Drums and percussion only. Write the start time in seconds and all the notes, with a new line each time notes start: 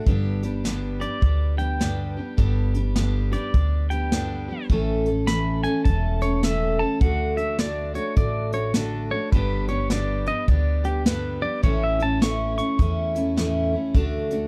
0.06 kick, closed hi-hat
0.43 closed hi-hat
0.65 snare, closed hi-hat
1.01 closed hi-hat
1.22 kick, closed hi-hat
1.58 closed hi-hat
1.81 snare, closed hi-hat
2.38 kick, closed hi-hat
2.74 closed hi-hat
2.96 snare, closed hi-hat
3.32 closed hi-hat
3.54 kick, closed hi-hat
3.90 closed hi-hat
4.12 snare, closed hi-hat
4.69 kick, closed hi-hat
5.06 closed hi-hat
5.27 snare, closed hi-hat
5.64 closed hi-hat
5.85 kick, closed hi-hat
6.21 closed hi-hat
6.43 snare, closed hi-hat
7.01 kick, closed hi-hat
7.37 closed hi-hat
7.59 snare, closed hi-hat
7.95 closed hi-hat
8.16 kick, closed hi-hat
8.52 closed hi-hat
8.74 snare, closed hi-hat
9.32 kick, closed hi-hat
9.68 closed hi-hat
9.90 snare, closed hi-hat
10.26 closed hi-hat
10.48 kick, closed hi-hat
10.84 closed hi-hat
11.06 snare, closed hi-hat
11.63 kick, closed hi-hat
12.00 closed hi-hat
12.22 snare, closed hi-hat
12.58 closed hi-hat
12.79 kick, closed hi-hat
13.15 closed hi-hat
13.37 snare, closed hi-hat
13.95 kick, closed hi-hat
14.31 closed hi-hat